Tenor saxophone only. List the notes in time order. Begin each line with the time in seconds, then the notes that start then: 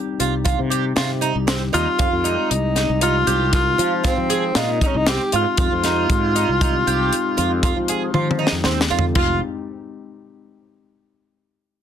1.74 F4
2.51 D#4
3.03 F4
3.54 F4
4.05 C4
4.56 D#4
4.82 D#4
4.86 C#4
4.96 D#4
5.09 G4
5.35 F4
9.15 F4